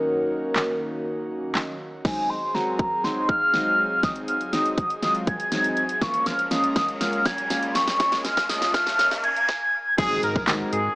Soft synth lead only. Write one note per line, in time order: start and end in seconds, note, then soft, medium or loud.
0.00 1.55 A#4 loud
2.05 2.31 G#5 medium
2.30 2.56 C6 medium
2.54 3.06 A#5 loud
3.04 3.28 C6 medium
3.29 3.99 F6 loud
4.03 4.15 D#6 loud
4.28 4.51 F6 loud
4.53 4.99 D#6 loud
5.03 5.14 D#6 loud
5.28 6.03 G#6 loud
6.02 6.28 C#6 loud
6.27 6.51 F6 loud
6.51 6.97 D#6 loud
7.01 7.27 F6 loud
7.26 7.75 G#6 loud
7.75 8.26 C#6 loud
8.25 8.49 F6 loud
8.50 8.73 D#6 loud
8.74 9.21 F6 loud
9.24 9.94 G#6 loud